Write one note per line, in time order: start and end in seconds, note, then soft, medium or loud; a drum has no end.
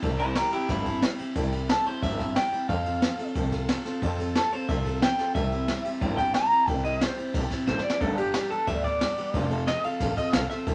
0.02 0.38 C2 loud
0.02 0.19 C3 medium
0.02 0.20 G3 medium
0.02 0.20 C4 loud
0.02 0.19 E4 medium
0.02 0.18 G4 medium
0.02 kick loud
0.02 ride medium
0.19 0.35 C4 soft
0.19 0.36 E4 medium
0.19 0.36 G4 medium
0.19 0.36 C5 medium
0.19 ride medium
0.35 0.52 G3 medium
0.35 0.53 C4 medium
0.35 0.52 E4 medium
0.35 0.52 G4 medium
0.35 0.51 G4 medium
0.35 0.52 A#4 medium
0.35 snare loud
0.35 ride medium
0.52 0.69 C4 soft
0.52 0.68 E4 medium
0.52 0.70 E4 soft
0.52 0.69 G4 medium
0.52 muted upright bass stroke medium
0.52 ride medium
0.69 1.04 G1 medium
0.69 0.86 C3 medium
0.69 0.86 G3 medium
0.69 0.86 C4 medium
0.69 1.02 E4 loud
0.69 0.86 E4 medium
0.69 0.84 G4 medium
0.69 kick loud
0.69 snare soft
0.69 ride medium
0.85 1.02 C4 medium
0.85 1.02 E4 medium
0.85 1.02 G4 medium
0.85 kick medium
0.85 ride medium
1.02 1.19 G3 medium
1.02 1.19 C4 medium
1.02 1.19 E4 medium
1.02 1.17 G4 medium
1.02 snare loud
1.02 ride medium
1.19 1.35 C4 medium
1.19 1.36 E4 medium
1.19 1.36 G4 medium
1.19 muted upright bass stroke medium
1.19 ride medium
1.35 1.71 C2 loud
1.35 1.52 C3 medium
1.35 1.53 G3 medium
1.35 1.53 C4 medium
1.35 1.53 E4 medium
1.35 1.51 G4 medium
1.35 kick loud
1.35 ride medium
1.52 1.69 C4 soft
1.52 1.70 E4 medium
1.52 1.69 G4 medium
1.52 ride medium
1.69 1.86 G3 medium
1.69 1.86 C4 medium
1.69 1.87 E4 medium
1.69 1.85 G4 medium
1.69 1.87 A4 medium
1.69 snare loud
1.69 ride medium
1.85 2.03 C4 soft
1.85 2.04 E4 medium
1.85 2.03 G4 medium
1.85 2.02 C5 medium
1.85 muted upright bass stroke medium
1.85 ride medium
2.02 2.37 G1 medium
2.02 2.19 C3 medium
2.02 2.20 G3 medium
2.02 2.20 C4 medium
2.02 2.20 E4 medium
2.02 2.18 G4 medium
2.02 2.35 E5 medium
2.02 kick loud
2.02 ride medium
2.19 2.36 C4 soft
2.19 2.37 E4 medium
2.19 2.36 G4 medium
2.19 kick medium
2.19 snare soft
2.19 ride medium
2.36 2.53 G3 medium
2.36 2.53 C4 medium
2.36 2.53 E4 medium
2.36 2.51 G4 medium
2.36 2.68 G5 loud
2.36 snare loud
2.36 ride medium
2.52 2.68 C4 soft
2.52 2.70 E4 medium
2.52 2.69 G4 medium
2.52 muted upright bass stroke medium
2.52 ride medium
2.69 3.04 F2 loud
2.69 2.85 F3 medium
2.69 2.86 C4 medium
2.69 2.86 F4 medium
2.69 2.84 A4 medium
2.69 3.34 F5 loud
2.69 kick loud
2.69 ride medium
2.85 3.02 C4 soft
2.85 3.03 F4 medium
2.85 3.02 A4 medium
2.85 ride medium
3.02 3.19 F3 medium
3.02 3.19 C4 medium
3.02 3.19 F4 medium
3.02 3.17 A4 medium
3.02 snare loud
3.02 ride medium
3.18 3.35 C4 medium
3.18 3.35 F4 medium
3.18 3.35 A4 medium
3.18 muted upright bass stroke medium
3.18 ride medium
3.35 3.70 C2 medium
3.35 3.52 F3 medium
3.35 3.52 C4 medium
3.35 3.52 F4 loud
3.35 3.50 A4 loud
3.35 kick loud
3.35 ride medium
3.51 3.68 C4 medium
3.51 3.69 F4 medium
3.51 3.68 A4 medium
3.51 kick medium
3.51 snare soft
3.51 ride medium
3.68 3.85 F3 medium
3.68 3.86 C4 medium
3.68 3.85 F4 medium
3.68 3.84 A4 medium
3.68 snare loud
3.68 ride medium
3.85 4.01 C4 medium
3.85 4.02 F4 medium
3.85 4.02 A4 medium
3.85 muted upright bass stroke medium
3.85 snare soft
3.85 ride medium
4.02 4.37 F2 loud
4.02 4.19 F3 medium
4.02 4.19 C4 medium
4.02 4.19 F4 medium
4.02 4.18 A4 loud
4.02 kick loud
4.02 ride medium
4.19 4.35 C4 medium
4.19 4.36 F4 medium
4.19 4.35 A4 medium
4.19 ride medium
4.35 4.52 F3 medium
4.35 4.52 C4 medium
4.35 4.52 F4 medium
4.35 4.53 A4 loud
4.35 4.51 A4 medium
4.35 snare loud
4.35 ride medium
4.52 4.68 C4 soft
4.52 4.69 F4 medium
4.52 4.69 A4 medium
4.52 4.68 C5 loud
4.52 muted upright bass stroke medium
4.52 ride medium
4.68 5.04 C2 medium
4.68 4.85 F3 medium
4.68 4.86 C4 medium
4.68 4.86 F4 medium
4.68 4.85 A4 medium
4.68 5.01 E5 medium
4.68 kick loud
4.68 ride medium
4.85 5.02 C4 medium
4.85 5.03 F4 medium
4.85 5.02 A4 medium
4.85 kick medium
4.85 ride medium
5.02 5.18 F3 medium
5.02 5.19 C4 medium
5.02 5.34 G5 loud
5.02 snare loud
5.02 ride medium
5.18 5.35 C4 soft
5.18 5.36 F4 medium
5.18 5.35 A4 medium
5.18 muted upright bass stroke medium
5.18 snare soft
5.18 ride medium
5.35 5.70 C2 loud
5.35 5.52 C3 medium
5.35 5.52 G3 medium
5.35 5.52 C4 medium
5.35 5.52 E4 medium
5.35 5.51 G4 medium
5.35 5.99 E5 loud
5.35 kick loud
5.35 snare soft
5.35 ride medium
5.52 5.68 C4 soft
5.52 5.69 E4 medium
5.52 5.69 G4 medium
5.52 ride medium
5.68 5.85 G3 medium
5.68 5.85 C4 medium
5.68 5.85 E4 medium
5.68 5.83 G4 medium
5.68 snare loud
5.68 ride medium
5.85 6.01 C4 medium
5.85 6.01 E4 medium
5.85 6.01 G4 medium
5.85 muted upright bass stroke medium
5.85 ride medium
6.01 6.36 G1 medium
6.01 6.18 C3 loud
6.01 6.18 G3 medium
6.01 6.19 C4 loud
6.01 6.18 E4 medium
6.01 6.16 G4 loud
6.01 kick loud
6.01 ride medium
6.17 6.34 C4 medium
6.17 6.34 E4 medium
6.17 6.34 G4 medium
6.17 6.34 G5 loud
6.17 kick medium
6.17 snare soft
6.17 ride medium
6.34 6.51 G3 medium
6.34 6.52 C4 medium
6.34 6.50 E4 medium
6.34 6.49 G4 medium
6.34 6.68 A#5 loud
6.34 snare loud
6.34 ride medium
6.50 6.67 C4 soft
6.50 6.67 E4 medium
6.50 6.67 G4 medium
6.50 muted upright bass stroke medium
6.50 ride medium
6.67 7.03 C2 loud
6.67 6.84 C3 medium
6.67 6.84 G3 medium
6.67 6.85 C4 medium
6.67 6.84 E4 medium
6.67 6.82 G4 medium
6.67 6.84 G5 loud
6.67 kick loud
6.67 ride medium
6.83 7.00 C4 soft
6.83 7.01 E4 soft
6.83 7.01 G4 medium
6.83 7.01 D#5 loud
6.83 ride medium
7.00 7.17 G3 medium
7.00 7.18 C4 medium
7.00 7.17 E4 medium
7.00 7.15 G4 medium
7.00 7.33 C5 loud
7.00 snare loud
7.00 ride medium
7.17 7.33 C4 soft
7.17 7.34 E4 soft
7.17 7.34 G4 medium
7.17 muted upright bass stroke medium
7.17 ride medium
7.33 7.49 B1 medium
7.33 7.51 C3 medium
7.33 7.51 G3 medium
7.33 7.51 C4 medium
7.33 7.50 E4 medium
7.33 7.49 G4 medium
7.33 kick loud
7.33 snare soft
7.33 ride medium
7.50 7.66 C4 medium
7.50 7.67 E4 medium
7.50 7.67 G4 medium
7.50 muted upright bass stroke medium
7.50 kick medium
7.50 snare soft
7.50 ride medium
7.66 7.82 A1 medium
7.66 7.84 G3 medium
7.66 7.84 C4 medium
7.66 7.84 E4 medium
7.66 7.82 G4 medium
7.66 7.83 C5 loud
7.66 snare medium
7.79 snare medium
7.83 8.02 C4 soft
7.83 8.02 E4 medium
7.83 8.01 G4 medium
7.83 8.00 D5 medium
7.90 snare loud
8.01 8.36 G1 loud
8.01 8.18 G2 medium
8.01 8.18 D3 medium
8.01 8.18 G3 medium
8.01 8.18 B3 medium
8.01 8.17 D4 medium
8.01 8.16 G4 medium
8.01 8.17 A4 loud
8.01 kick loud
8.01 ride medium
8.17 8.33 G3 soft
8.17 8.34 B3 medium
8.17 8.34 D4 medium
8.17 8.34 G4 medium
8.17 8.50 G4 medium
8.17 ride medium
8.34 8.51 G3 medium
8.34 8.51 B3 medium
8.34 8.50 D4 medium
8.34 8.49 G4 medium
8.34 snare loud
8.34 ride medium
8.50 8.67 G3 soft
8.50 8.67 B3 medium
8.50 8.68 D4 medium
8.50 8.67 G4 medium
8.50 8.67 A4 loud
8.50 muted upright bass stroke medium
8.50 ride medium
8.67 9.02 D2 medium
8.67 8.84 G2 medium
8.67 8.84 D3 medium
8.67 8.84 G3 medium
8.67 8.84 B3 medium
8.67 8.83 D4 medium
8.67 8.82 G4 loud
8.67 8.84 E5 loud
8.67 kick loud
8.67 ride medium
8.83 8.99 G3 soft
8.83 9.00 B3 medium
8.83 9.01 D4 medium
8.83 9.00 G4 medium
8.83 9.49 D5 loud
8.83 kick medium
8.83 ride medium
9.00 9.17 G3 medium
9.00 9.18 B3 medium
9.00 9.18 D4 medium
9.00 9.16 G4 medium
9.00 snare loud
9.00 ride medium
9.17 9.34 G3 soft
9.17 9.34 B3 medium
9.17 9.35 D4 medium
9.17 9.34 G4 medium
9.17 muted upright bass stroke medium
9.17 ride medium
9.34 9.69 F1 loud
9.34 9.51 F3 medium
9.34 9.51 C4 loud
9.34 9.51 F4 loud
9.34 9.49 A4 loud
9.34 kick loud
9.34 ride medium
9.50 9.67 C4 medium
9.50 9.68 F4 medium
9.50 9.67 A4 medium
9.50 ride medium
9.67 9.84 F3 medium
9.67 9.84 C4 medium
9.67 9.84 F4 medium
9.67 9.83 A4 medium
9.67 9.83 D#5 loud
9.67 snare loud
9.67 ride loud
9.84 10.00 C4 soft
9.84 10.01 F4 soft
9.84 10.00 A4 medium
9.84 10.17 F5 loud
9.84 muted upright bass stroke medium
9.84 ride medium
10.00 10.15 A1 medium
10.00 10.17 F3 medium
10.00 10.17 C4 medium
10.00 10.18 F4 medium
10.00 10.16 A4 loud
10.00 kick loud
10.00 snare soft
10.00 ride medium
10.17 10.32 C4 soft
10.17 10.34 F4 medium
10.17 10.34 A4 medium
10.17 10.32 D#5 loud
10.17 kick medium
10.17 ride medium
10.32 10.48 B1 medium
10.32 10.50 F3 medium
10.32 10.50 C4 medium
10.32 10.50 F4 medium
10.32 10.48 A4 medium
10.32 10.49 F5 loud
10.32 snare loud
10.32 ride loud
10.49 10.66 C4 soft
10.49 10.67 F4 soft
10.49 10.66 A4 medium
10.49 10.66 E5 loud
10.49 muted upright bass stroke medium
10.49 snare soft
10.49 ride medium
10.66 10.75 C2 loud
10.66 10.75 C3 medium
10.66 10.75 G3 medium
10.66 10.75 C4 medium
10.66 10.75 E4 medium
10.66 10.75 G4 loud
10.66 kick loud
10.66 ride medium